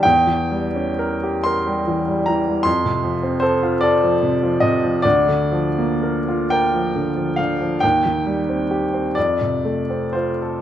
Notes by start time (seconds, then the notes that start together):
0.03 E2 G5
0.27 E3
0.51 G3
0.75 C#4
0.99 A#4
1.23 G4
1.44 A#4 C6
1.67 G3
1.88 E3
2.08 G3
2.26 E3 A#5
2.47 G3
2.63 F2 C6
2.85 C3
3.03 F3
3.23 C4
3.40 A4 C5
3.63 F4
3.81 A4 D5
4.04 F3
4.23 C3
4.43 F3
4.60 C3 D#5
4.84 F3
5.02 D2 D5
5.29 D3
5.52 F3
5.78 A#3
6.03 A#4
6.28 F4
6.50 A#4 G5
6.74 F3
6.95 D3
7.16 F3
7.36 D3 F5
7.61 F3
7.80 D#2 G5
8.06 D#3
8.26 G3
8.49 C4
8.71 G4
8.94 C4
9.15 F2 D5
9.41 C3
9.65 A3
9.90 C4
10.13 F4 C5
10.42 A4